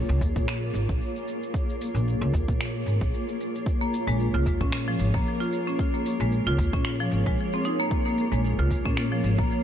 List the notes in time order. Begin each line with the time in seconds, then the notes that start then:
Already playing: A#3 F4 G#4 A#4 C#5
0.09 C#2
0.21 D#2, kick, shaker
0.36 A#2, kick, shaker
0.48 finger snap, shaker
0.74 G#1, shaker
0.89 A#1, kick, shaker
1.02 shaker
1.16 shaker
1.28 shaker
1.43 shaker
1.54 kick, shaker
1.70 shaker
1.81 shaker
1.95 A#1, shaker
2.08 shaker
2.21 C#2
2.34 D#2, kick, shaker
2.48 A#2, kick, shaker
2.61 finger snap, shaker
2.86 G#1, shaker
3.01 A#1, kick, shaker
3.14 shaker
3.29 shaker
3.41 shaker
3.55 shaker
3.66 kick, shaker
3.81 A#3, shaker
3.94 shaker
4.07 A#1 G#3, shaker
4.20 shaker
4.34 C#2 F4
4.46 D#2, kick, shaker
4.60 A#2 C#4, kick, shaker
4.72 finger snap, shaker
4.88 F3
4.99 G#1, shaker
5.14 A#1 A#3, kick, shaker
5.26 shaker
5.40 F4, shaker
5.53 shaker
5.67 C#4, shaker
5.79 kick, shaker
5.94 A#3, shaker
6.06 shaker
6.20 A#1 G#3, shaker
6.32 shaker
6.47 C#2 F4
6.58 D#2, kick, shaker
6.73 A#2 C#4, kick, shaker
6.85 finger snap, shaker
7.00 F3, shaker
7.11 G#1, shaker
7.26 A#1 G#3, kick, shaker
7.38 shaker
7.53 C4, shaker
7.65 D#4, shaker
7.79 A#3, shaker
7.91 kick, shaker
8.06 A#3, shaker
8.18 shaker
8.32 A#1 G#3, shaker
8.45 shaker
8.59 C#2 F4
8.71 D#2, kick, shaker
8.85 A#2 C#4, kick, shaker
8.97 finger snap, shaker
9.12 F3
9.24 G#1, shaker
9.38 A#1 A#3, kick, shaker
9.51 shaker